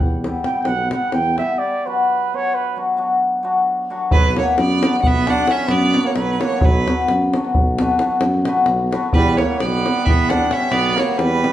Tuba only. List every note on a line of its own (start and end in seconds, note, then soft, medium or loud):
0.01 0.40 E2 medium
0.65 0.93 B1 medium
1.12 1.41 E2 medium
4.11 4.39 B1 loud
4.58 4.86 F#2 loud
5.05 5.44 B1 medium
5.69 5.97 F#2 loud
6.15 6.44 B1 medium
6.62 6.90 B1 loud
7.09 7.37 F#2 medium
7.56 7.95 B1 loud
8.20 8.48 F#2 loud
8.68 8.96 B1 medium
9.14 9.42 E2 loud
9.61 9.89 B1 loud
10.07 10.46 E2 medium
10.71 11.00 B1 loud
11.18 11.46 E2 loud